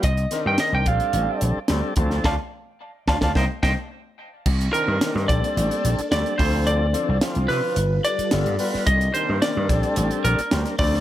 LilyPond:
<<
  \new Staff \with { instrumentName = "Lead electric guitar" } { \time 4/4 \key c \dorian \tempo 4 = 109 ees''8. g''16 ees''16 g''16 f''4 r4. | <d'' f'' a''>16 r4 r16 <d'' f'' a''>16 <d'' f'' a''>16 <c'' ees'' g''>16 r16 <c'' ees'' g''>16 r4 r16 | r8 bes'4 d''4. d''8 c''8 | d''4 r8 b'4 d''4. |
ees''8 c''8 d''4 r8 bes'4 d''8 | }
  \new Staff \with { instrumentName = "String machine" } { \time 4/4 \key c \dorian << { r1 | r1 | <c ees'>4. a'2 f'8~ | f'2 <g b'>2 |
<c ees'>4. a''2 f'8 | } \\ { r1 | r1 | <bes d'>2.~ <bes d'>8 <d c'>8~ | <d c'>2 a'2 |
<bes d'>2.~ <bes d'>8 <d c'>8 | } >> }
  \new Staff \with { instrumentName = "Tonewheel organ" } { \time 4/4 \key c \dorian r8 <ees c' d' bes'>8 <ees c' d' bes'>8 <g c' d' a'>4. <g c' d' a'>8 <f c' d' a'>8 | <c' d' f'>16 r4 r16 <c' d' f'>16 <c' d' f'>16 <bes c' ees'>16 r16 <bes c' ees'>16 r4 r16 | r8 <ees c' d' bes'>8 <ees c' d' bes'>8 <g c' d' a'>4. <g c' d' a'>8 <f c' d' a'>8~ | <f c' d' a'>8 <f c' d' a'>8 <f c' d' f'>4 r4 <g b f' a'>8 <g b f' b'>8 |
r8 <ees c' d' bes'>8 <ees c' d' bes'>8 <g c' d' a'>4. <g c' d' bes'>8 <f c' d' a'>8 | }
  \new Staff \with { instrumentName = "Slap bass" } { \clef bass \time 4/4 \key c \dorian c,8 r16 g,16 r16 c,16 bes,,16 r16 a,,16 r16 bes,,16 r16 d,16 r16 d,8 | d,16 r4 r16 d,16 d,16 c,16 r16 c,16 r4 r16 | c,8 r16 g,16 r16 g,16 bes,,16 r16 a,,16 r16 bes,,16 r16 d,16 r16 d,8~ | d,8. c,16 r16 c,16 c16 r16 g,,8 r8 g,,16 g,16 r8 |
c,8 r16 g,16 r16 g,16 bes,,16 r16 a,,16 r16 bes,,16 r16 d,16 r16 d,8 | }
  \new DrumStaff \with { instrumentName = "Drums" } \drummode { \time 4/4 <hh bd>16 hh16 <hh sn>8 <hh sn>8 <hh bd>16 hh16 hh8 hh8 <hh sn>8 <hh bd>16 sn16 | <bd sn>4 r8 <bd sn>16 <bd sn>16 <bd sn>8 <bd sn>8 r4 | <cymc bd>16 hh16 hh8 <hh sn>16 sn16 <hh bd>16 hh16 hh16 hh16 hh16 hh16 <hh sn>16 hh16 <hho bd>8 | hh8 hh8 <hh sn>16 hh16 <hho sn>8 hh8 hh16 hh16 <hh sn>16 hh16 hho16 sn16 |
<hh bd>16 hh16 hh8 <hh sn>8 <hh bd sn>16 hh16 hh16 hh16 hh16 hh16 <hh sn>16 <hh sn>16 <hho bd>16 sn16 | }
>>